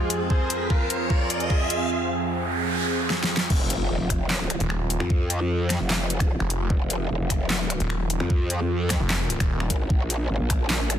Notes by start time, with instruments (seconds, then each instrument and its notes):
Already playing: analog synth pad F2 F3 C4 G#4, supersaw synth G#3 F4, riser
0.10 closed hi-hat
0.30 supersaw synth G#4 C5, kick
0.50 closed hi-hat
0.70 supersaw synth F4 A#4, kick
0.90 closed hi-hat
1.10 supersaw synth F4 A#4, kick
1.30 closed hi-hat
1.40 closed hi-hat
1.50 supersaw synth F4 G#4, kick
1.70 closed hi-hat
1.90 noise sweep
3.10 snare
3.23 snare
3.37 snare
3.50 wobble bass F1, analog synth pad F3 F4 G#4 C5, kick, crash, impact
3.70 closed hi-hat
3.90 wobble bass D#1
4.00 wobble bass F1
4.10 finger snap, kick, closed hi-hat
4.30 snare, clap
4.50 finger snap, closed hi-hat
4.60 detuned saw bass D#1, closed hi-hat
4.70 finger snap
4.90 closed hi-hat
5.00 wobble bass F2, finger snap
5.10 kick
5.30 closed hi-hat
5.70 finger snap, snare, closed hi-hat
5.80 wobble bass F1
5.90 snare, clap
6.10 closed hi-hat
6.20 finger snap, kick, closed hi-hat
6.40 detuned saw bass F1, finger snap
6.50 closed hi-hat
6.70 wobble bass F1, analog synth pad A#4, kick
6.90 closed hi-hat
7.10 wobble bass D#1
7.20 wobble bass F1
7.30 finger snap, kick, closed hi-hat
7.50 snare, clap
7.70 finger snap, closed hi-hat
7.80 detuned saw bass D#1, closed hi-hat
7.90 finger snap
8.10 closed hi-hat
8.20 wobble bass F2, finger snap
8.30 kick
8.50 closed hi-hat
8.90 finger snap, kick, snare, closed hi-hat
9.00 detuned saw bass F1
9.10 snare, clap
9.30 closed hi-hat
9.40 detuned saw bass D#1, finger snap, kick, closed hi-hat
9.60 finger snap
9.70 wobble bass G#1, kick, closed hi-hat
9.90 wobble bass A#1, analog synth pad A#3 C#5 F5, kick
10.10 closed hi-hat
10.30 wobble bass G#1
10.40 wobble bass A#1
10.50 finger snap, kick, closed hi-hat
10.70 snare, clap
10.81 wobble bass A1
10.90 finger snap, closed hi-hat